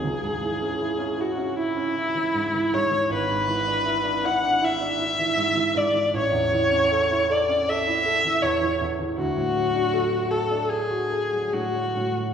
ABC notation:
X:1
M:4/4
L:1/16
Q:1/4=78
K:C#phr
V:1 name="Viola"
G6 F2 E6 c2 | [K:A] B6 f2 e6 d2 | c6 d2 e4 c2 z2 | F6 A2 G4 F4 |]
V:2 name="Grand piano"
C,, G,, E, C E C E C E C E E, G,, E, G,, E, | [K:A] G,,, G,, E, D E D E D E D E E, G,, E, G,, E, | A,,, E,, E, C A E A C A E A E, E,, E, E,, E, | D,, A,, F, D A F A D A F A F, A,, F, A,, F, |]